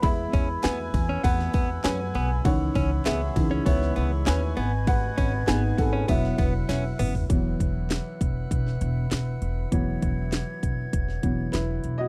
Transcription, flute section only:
0.00 2.22 B4 medium
0.00 5.76 B5 medium
0.00 4.53 E6 medium
0.00 2.43 G#6 medium
2.45 4.55 C#5 medium
2.45 5.83 C#6 medium
4.57 7.27 B4 medium
4.57 6.07 D#5 medium
4.57 5.78 G#6 loud
6.08 7.28 E5 medium
6.08 7.28 F#5 medium
6.08 7.29 E6 medium
6.08 7.29 F#6 medium
7.29 12.08 B4 medium
7.29 12.08 E5 medium
7.29 12.08 F#5 medium
7.29 12.08 E6 medium
7.29 9.70 F#6 medium
9.72 12.08 G#6 medium

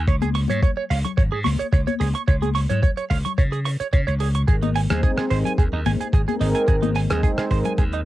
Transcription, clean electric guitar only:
0.08 0.15 C#5 medium
0.22 0.29 G#4 medium
0.35 0.39 C#6 medium
0.50 0.59 C#5 medium
0.63 0.70 C#5 medium
0.77 0.84 C#5 medium
0.90 0.98 F5 medium
1.05 1.11 C#6 medium
1.17 1.22 C#5 medium
1.32 1.39 G#4 medium
1.44 1.49 C#6 medium
1.59 1.66 C#5 medium
1.73 1.80 C#5 medium
1.87 1.94 C#5 medium
2.00 2.07 G#4 medium
2.15 2.21 C#6 medium
2.28 2.35 C#5 medium
2.42 2.49 G#4 medium
2.55 2.59 C#6 medium
2.69 2.79 C#5 medium
2.82 2.90 C#5 medium
2.97 3.04 C#5 medium
3.10 3.18 F5 medium
3.25 3.31 C#6 medium
3.38 3.42 C#5 medium
3.52 3.59 G#4 medium
3.65 3.70 C#6 medium
3.80 3.87 C#5 medium
3.93 4.00 C#5 medium
4.07 4.14 C#5 medium
4.20 4.28 G#4 medium
4.35 4.42 C#6 medium
4.48 4.55 G#4 medium
4.63 4.69 D#4 medium
4.76 4.80 G#5 medium
4.90 5.00 G#4 medium
5.03 5.10 G#4 medium
5.17 5.24 G#4 medium
5.30 5.38 C5 medium
5.45 5.52 G#5 medium
5.58 5.63 G#4 medium
5.73 5.79 D#4 medium
5.86 5.90 G#5 medium
6.00 6.07 G#4 medium
6.13 6.21 G#4 medium
6.28 6.34 G#4 medium
6.41 6.48 D#4 medium
6.55 6.62 G#5 medium
6.68 6.75 G#4 medium
6.82 6.89 D#4 medium
6.96 7.00 G#5 loud
7.10 7.20 G#4 medium
7.23 7.31 G#4 medium
7.38 7.44 G#4 medium
7.51 7.58 C5 medium
7.65 7.72 G#5 medium
7.78 7.83 G#4 medium
7.93 8.00 D#4 medium

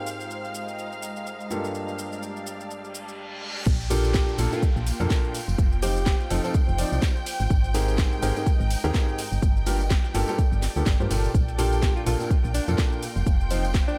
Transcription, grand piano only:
0.00 1.48 G#2 medium
0.00 1.48 C4 medium
0.00 1.48 G4 medium
0.00 1.48 G#4 medium
0.00 1.48 A#4 medium
1.50 3.64 G2 medium
1.50 3.64 A#3 medium
1.50 3.64 F4 medium
1.50 3.64 G4 medium
1.50 3.64 A4 medium
3.90 4.36 A#2 loud
3.90 4.36 A#3 medium
3.90 4.36 D4 medium
3.90 4.36 F4 medium
3.90 4.36 A4 loud
4.39 4.50 A#2 loud
4.39 4.50 A#3 medium
4.39 4.50 D4 medium
4.39 4.50 F4 medium
4.39 4.50 A4 loud
4.52 4.62 A#2 medium
4.52 4.62 A#3 medium
4.52 4.62 D4 medium
4.52 4.62 F4 medium
4.52 4.62 A4 medium
5.00 5.33 A#2 loud
5.00 5.33 A#3 loud
5.00 5.33 D4 medium
5.00 5.33 F4 loud
5.00 5.33 A4 loud
5.82 5.95 F3 medium
5.82 5.95 C4 medium
5.82 5.95 D#4 medium
5.82 5.95 F4 medium
5.82 5.95 C5 loud
6.30 6.41 F3 loud
6.30 6.41 C4 medium
6.30 6.41 D#4 medium
6.30 6.41 F4 medium
6.30 6.41 A4 loud
6.44 6.54 F3 loud
6.44 6.54 C4 medium
6.44 6.54 D#4 medium
6.44 6.54 F4 medium
6.44 6.54 A4 loud
6.78 6.97 F3 medium
6.78 6.97 C4 medium
6.78 6.97 D#4 medium
6.78 6.97 F4 medium
6.78 6.97 D5 loud
7.74 8.20 G#2 loud
7.74 8.20 C4 medium
7.74 8.20 G4 medium
7.74 8.20 G#4 medium
7.74 8.20 A#4 loud
8.22 8.34 G#2 loud
8.22 8.34 C4 medium
8.22 8.34 G4 medium
8.22 8.34 G#4 medium
8.22 8.34 A#4 loud
8.36 8.46 G#2 medium
8.36 8.46 C4 medium
8.36 8.46 G4 medium
8.36 8.46 G#4 medium
8.36 8.46 A#4 medium
8.84 9.17 G#2 loud
8.84 9.17 C4 medium
8.84 9.17 G4 loud
8.84 9.17 G#4 loud
8.84 9.17 A#4 loud
9.66 9.79 G2 medium
9.66 9.79 A#3 medium
9.66 9.79 F4 medium
9.66 9.79 G4 medium
9.66 9.79 A#4 loud
10.14 10.25 G2 loud
10.14 10.25 A#3 medium
10.14 10.25 F4 medium
10.14 10.25 G4 medium
10.14 10.25 A4 loud
10.28 10.38 G2 loud
10.28 10.38 A#3 medium
10.28 10.38 F4 medium
10.28 10.38 G4 medium
10.28 10.38 A4 loud
10.76 10.86 G2 medium
10.76 10.86 A#3 medium
10.76 10.86 F4 medium
10.76 10.86 G4 medium
10.76 10.86 A4 medium
11.00 11.08 G2 medium
11.00 11.08 A#3 medium
11.00 11.08 F4 medium
11.00 11.08 G4 medium
11.00 11.08 C5 loud
11.11 11.29 A#2 medium
11.11 11.29 A#3 medium
11.11 11.29 F4 medium
11.11 11.29 G4 medium
11.11 11.29 A4 medium
11.58 12.04 A#2 loud
11.58 12.04 A#3 medium
11.58 12.04 D4 medium
11.58 12.04 F4 medium
11.58 12.04 A4 loud
12.06 12.18 A#2 medium
12.06 12.18 A#3 medium
12.06 12.18 D4 medium
12.06 12.18 F4 medium
12.06 12.18 A4 loud
12.20 12.30 A#2 medium
12.20 12.30 A#3 medium
12.20 12.30 D4 medium
12.20 12.30 F4 medium
12.20 12.30 A4 medium
12.68 13.01 A#2 loud
12.68 13.01 A#3 medium
12.68 13.01 D4 medium
12.68 13.01 F4 medium
12.68 13.01 A4 loud
13.51 13.63 F3 medium
13.51 13.63 C4 medium
13.51 13.63 D#4 medium
13.51 13.63 F4 medium
13.51 13.63 C5 loud

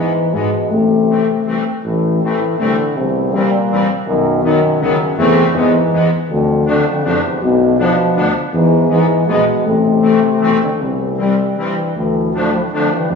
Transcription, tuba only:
0.34 0.46 G#2 medium
0.71 1.21 A1 medium
1.46 1.59 C2 medium
1.85 2.33 A1 medium
2.60 2.72 C2 medium
2.98 3.46 C2 loud
3.72 3.84 C2 medium
4.08 4.55 B1 loud
4.81 4.93 C#2 medium
5.17 5.42 E2 loud
5.54 5.79 E2 loud
5.92 6.05 E2 medium
6.31 6.79 D2 loud
7.06 7.18 F2 medium
7.42 7.90 B1 loud
8.17 8.29 D2 loud
8.53 9.01 E2 loud
9.28 9.40 A#1 medium
9.65 10.15 A1 medium
10.41 10.54 B1 medium
10.81 11.55 C2 loud
11.96 12.70 D2 medium
13.11 13.15 F2 loud

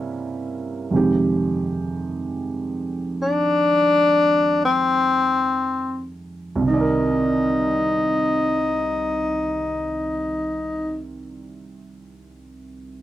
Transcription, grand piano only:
0.00 0.91 C3 medium
0.00 0.92 G3 medium
0.00 0.92 A#3 medium
0.00 0.93 C#4 medium
0.00 0.93 E4 medium
0.91 6.65 F2 soft
0.91 6.60 C3 soft
0.91 6.66 D#3 soft
0.91 6.66 G#3 soft
0.96 6.67 G4 soft
6.56 10.94 C2 soft
6.61 11.00 C3 soft
6.68 11.07 D#3 soft
6.74 11.13 D5 soft
6.81 11.19 A#4 soft

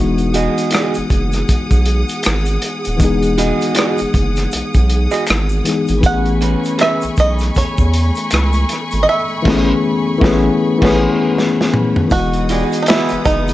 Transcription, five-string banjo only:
6.06 6.81 F#5 loud
6.81 7.19 E5 medium
7.20 7.54 D#5 medium
7.58 9.07 C#5 medium
9.03 9.08 D#5 medium
9.09 11.32 E5 medium
12.12 12.82 F#4 loud
12.83 12.88 D#4 medium
12.88 13.25 E4 medium
13.26 13.54 D#4 medium

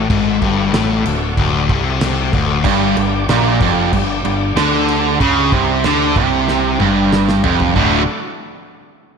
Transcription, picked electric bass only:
0.10 0.40 G#1 loud
0.42 0.71 G1 loud
0.73 1.03 A1 loud
1.06 1.35 D1 medium
1.38 1.67 D1 loud
1.69 2.29 C2 loud
2.34 2.63 D1 medium
2.65 2.95 G1 loud
2.97 3.27 G1 medium
3.29 3.59 A#1 loud
3.61 3.91 F1 loud
3.93 4.23 G1 medium
4.25 4.55 G1 medium
4.57 5.17 D2 loud
5.21 5.50 C#2 loud
5.52 5.82 C2 loud
5.84 6.14 D2 medium
6.16 6.76 C2 medium
6.81 7.40 G1 medium
7.44 7.74 F1 medium
7.76 8.06 D1 loud

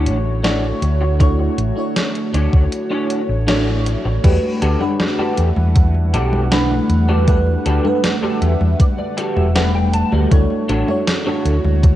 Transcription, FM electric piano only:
0.00 0.43 A3 medium
0.00 0.44 D4 medium
0.00 0.44 E4 medium
0.00 0.45 F#4 medium
0.00 0.45 C#5 loud
0.43 1.15 A3 loud
0.43 1.15 D4 medium
0.43 1.16 E4 medium
0.43 1.16 F#4 medium
0.43 1.16 C#5 loud
1.19 1.72 A3 medium
1.19 1.72 D4 medium
1.19 1.73 E4 medium
1.19 1.73 F#4 medium
1.19 1.73 C#5 loud
1.76 3.43 A3 medium
1.76 3.43 D4 medium
1.76 3.43 E4 medium
1.76 3.44 F#4 medium
1.76 3.44 C#5 medium
3.47 4.19 A3 loud
3.47 4.19 D4 medium
3.47 4.19 E4 medium
3.47 4.19 F#4 medium
3.47 4.20 C#5 loud
4.23 4.76 A3 loud
4.23 4.76 D4 medium
4.23 4.76 F#4 medium
4.23 4.77 G4 medium
4.23 4.77 B4 loud
4.79 6.47 G3 medium
4.79 6.46 A3 medium
4.79 6.47 D4 medium
4.79 6.48 B4 medium
4.79 6.47 F#5 medium
6.51 7.23 G3 medium
6.51 7.23 A3 loud
6.51 7.23 D4 medium
6.51 7.24 B4 loud
6.51 7.23 F#5 medium
7.27 7.80 G3 medium
7.27 7.80 A3 medium
7.27 7.80 D4 medium
7.27 7.81 B4 loud
7.27 7.80 F#5 medium
7.83 9.52 G3 medium
7.83 9.50 A3 medium
7.83 9.51 D4 medium
7.83 9.52 B4 medium
7.83 9.51 F#5 medium
9.55 10.27 G3 medium
9.55 10.27 A3 loud
9.55 10.27 D4 medium
9.55 10.27 B4 loud
10.31 10.83 A3 loud
10.31 10.84 D4 medium
10.31 10.84 E4 medium
10.31 10.84 F#4 medium
10.31 10.84 C#5 loud
10.87 11.96 A3 medium
10.87 11.96 D4 medium
10.87 11.96 E4 medium
10.87 11.96 F#4 medium
10.87 11.96 C#5 medium

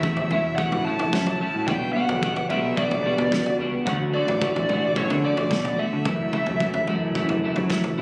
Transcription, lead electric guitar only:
0.00 0.55 E5 medium
0.56 0.82 F#5 medium
0.85 1.70 A5 loud
1.67 1.93 G5 medium
1.93 2.45 F#5 medium
2.50 2.78 E5 medium
2.76 3.55 D5 medium
3.86 3.94 F#5 loud
4.14 4.97 D5 medium
4.98 5.23 C#5 medium
5.25 5.81 D5 medium
5.79 6.85 E5 medium

